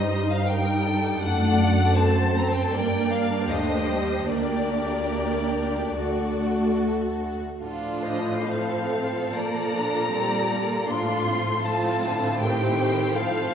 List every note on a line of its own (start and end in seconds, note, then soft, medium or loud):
0.00 1.20 G2 soft
0.00 0.48 G3 soft
0.00 0.48 D#4 soft
0.00 0.48 C5 soft
0.00 0.30 D#5 medium
0.30 0.49 F5 medium
0.48 1.22 G3 soft
0.48 1.22 D#4 soft
0.48 0.86 A#4 soft
0.48 1.23 G5 medium
0.87 1.22 A4 soft
1.23 2.72 F#2 soft
1.23 1.97 A3 soft
1.23 1.96 D4 soft
1.23 1.96 A4 soft
1.23 1.96 D5 soft
1.23 1.96 F#5 medium
1.96 2.34 A3 soft
1.96 2.34 C4 soft
1.96 2.72 A4 soft
1.96 2.71 C5 soft
1.96 2.36 A5 medium
2.35 2.72 C4 soft
2.35 2.45 A#5 soft
2.47 2.55 A5 medium
2.54 2.63 G5 medium
2.63 2.72 A5 medium
2.72 3.47 G2 soft
2.72 3.49 A#3 soft
2.72 4.30 D4 soft
2.72 3.49 A#4 soft
2.72 3.49 D5 soft
2.72 3.10 G5 medium
3.11 3.49 F5 medium
3.48 4.30 D#2 soft
3.48 3.88 A3 soft
3.48 4.30 G4 soft
3.48 4.30 C5 soft
3.48 4.31 D#5 medium
3.89 4.29 G3 soft
4.30 5.94 D2 soft
4.30 5.94 A#3 soft
4.30 5.94 D4 soft
4.30 5.94 G4 soft
4.30 5.97 A#4 soft
4.30 6.76 D5 medium
5.97 7.39 D2 soft
5.97 7.42 A3 soft
5.97 7.42 F#4 soft
5.97 7.39 F#4 soft
5.97 7.39 A4 soft
7.62 9.28 A2 soft
7.62 9.28 F3 soft
7.62 8.41 D4 soft
7.62 8.40 F4 soft
7.62 8.00 A4 soft
8.03 9.32 C5 soft
8.03 8.41 D#5 soft
8.44 9.32 C4 soft
8.44 10.88 A4 soft
8.44 9.32 F5 soft
9.32 10.89 A#2 soft
9.32 10.11 F3 soft
9.32 9.74 A#3 soft
9.32 10.12 D5 soft
9.32 10.89 A#5 medium
9.73 10.12 D4 soft
10.12 10.87 G3 soft
10.12 10.49 C4 soft
10.12 10.88 D5 soft
10.50 10.89 A#3 soft
10.89 13.54 A2 soft
10.89 11.64 F3 soft
10.89 11.28 D4 soft
10.89 11.64 F4 soft
10.89 12.42 A4 soft
10.89 11.65 C6 medium
11.27 13.54 C4 soft
11.64 12.03 F3 soft
11.64 12.40 F4 soft
11.64 12.41 A5 medium
12.03 12.41 D3 soft
12.41 13.16 D#3 soft
12.41 13.18 G4 soft
12.41 13.54 C5 soft
12.41 13.14 G5 medium
13.17 13.51 F3 soft
13.17 13.54 A4 soft
13.17 13.54 F5 medium